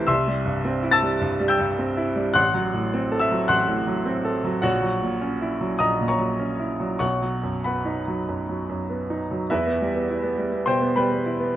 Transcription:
Already playing: C2 C3 E3 A3 E4 C5 A5 C6
0.07 C2 E5 C6 E6
0.27 G3
0.46 G2
0.65 C4
0.83 E4
0.91 A5 E6 A6
1.02 G3
1.21 G2
1.40 G3
1.48 G5 E6 G6
1.59 G2
1.78 C4
1.97 E4
2.16 G3
2.34 A1 F#5 C6 F#6
2.54 F#3
2.74 A2
2.94 C4
3.12 A4
3.20 E5 E6
3.31 F#3
3.48 A1 F#5 C6 F#6
3.68 A2
3.87 F#3
4.06 C4
4.25 A4
4.44 F#3
4.62 A#1 F#4 C#5 F#5
4.82 F#3
5.02 A#2
5.21 C#4
5.41 E4
5.61 F#3
5.79 A#1 D#5 A#5 D#6
6.01 A#2
6.08 C#5 A#5 C#6
6.19 F#3
6.39 C#4
6.60 E4
6.80 F#3
6.99 B1 C#5 F#5 C#6
7.22 F#3
7.43 F#2
7.64 B3 B4 F#5 B5
7.85 D#4
8.08 F#3
8.29 F#2
8.49 F#3
8.69 F#2
8.90 B3
9.10 D#4
9.31 F#3
9.50 E2 E4 B4 E5
9.67 B3
9.81 G3
9.95 B3
10.10 E4
10.23 B3
10.38 G3
10.52 B3
10.66 B2 C5 G5 C6
10.81 B3
10.96 G3 B4 G5 B5
11.12 B3
11.26 E4
11.40 B3

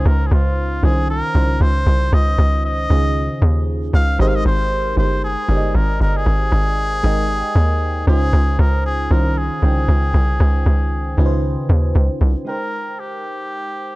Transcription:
Already playing: C#3 C#4 D#4 F4 C5
0.05 C#2 A#4
0.27 G#4
0.31 C#2 F4
0.82 C2 D#3 C#4 D#4 F4 G#4 C5
1.10 A#4
1.34 C2 C#3 C#4 D#4 F4 C5
1.61 C#2 C5
1.86 C2
2.12 C#2 D#5
2.38 C#2
2.65 D#5
2.89 C#2 C#3 C#4 D#4 F4 G#4
3.42 D#2
3.93 C#2 F5
4.19 G#1 G#3 D#4 G4 A#4 C5 D#5
4.28 F5
4.36 D#5
4.45 G#1 C5
4.96 G1 G#3 D#4 G4 A#4 C5
5.24 G#4
5.48 G1 G#3 D#4 G4 A#4 D5
5.57 D#5
5.74 G#1 A#4
6.00 G1 A#4
6.17 G#4
6.26 G#1
6.52 G#1
7.03 G#1 G#3 D#4 A#4 D#5 G5
7.55 D#2
8.07 C#2 C#3 C#4 D#4 F4 G#4 C5
8.33 C#2
8.59 C#2 A#4
8.86 G#4
9.10 C2 D#3 C#4 D#4 F4 A#4 C5
9.38 G#4
9.62 C2 C#3 C#4 D#4 F4 G5
9.88 C#2
10.14 C2
10.40 C#2
10.66 C#2
11.17 C#2 C#3 C#4 D#4 F4 B4
11.26 C5
11.69 D#2
11.95 C#2
12.21 C2
12.45 G#3 D#4 A#4 G5
12.49 A#4 C5
13.00 G4

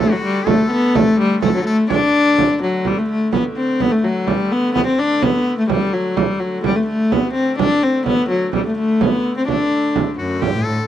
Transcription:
Already playing: D3 A3
0.00 A3 A4
0.11 F#3 F#4
0.24 G3
0.47 A3 A4, frame drum
0.71 B3
0.95 A3 A4, frame drum
1.20 G3
1.42 A3 A4, frame drum
1.55 F#3
1.66 A3 A4
1.90 D4 D5, frame drum
2.38 frame drum
2.62 F#3, frame drum
2.85 D3 G3 A3, frame drum
2.98 A3
3.10 A3
3.33 B3, frame drum
3.56 C4
3.80 B3, frame drum
3.92 A3
4.04 F#3
4.27 G3, frame drum
4.52 B3
4.74 B3, frame drum
4.87 C4
4.99 D4
5.22 B3, frame drum
5.58 A3
5.69 G3, frame drum
5.93 F#3
6.17 G3, frame drum
6.40 F#3
6.63 D3 G3 A3, frame drum
6.76 A3
6.86 A3
7.11 B3, frame drum
7.34 C4
7.59 D4, frame drum
7.83 C4
8.06 B3, frame drum
8.30 F#3
8.53 G3, frame drum
8.66 A3
8.78 A3
9.01 B3, frame drum
9.37 C4
9.48 D4, frame drum
9.73 frame drum
9.96 frame drum
10.18 F#2 F#4
10.41 G2 D3 A3 G4, frame drum
10.54 A2
10.65 A2 A4

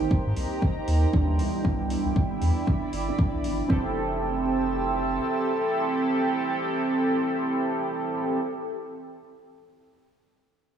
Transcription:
Already playing: D#4 G4 A#4 C5 D#5 G5 A#5 C6
0.01 G#1
0.11 kick
0.26 G#2 A#5
0.36 C2, open hi-hat
0.62 kick
0.88 D#2, open hi-hat
1.13 D#2 G3 B3 D4 E4, kick
1.39 C2 E4 E5 B5 D6, open hi-hat
1.64 C2 G3 B3 D4 E4, kick
1.90 open hi-hat
2.06 C2
2.10 B5
2.16 kick
2.28 G1 D5
2.42 E2, open hi-hat
2.67 kick
2.93 G1, open hi-hat
3.08 G3 B3 D4 E4
3.18 G3 B3 D4 E4, kick
3.34 C2
3.44 G1, open hi-hat
3.68 F1 C4 E4 G4 A4 E5 G5 C6, kick
3.79 E6
3.87 A5

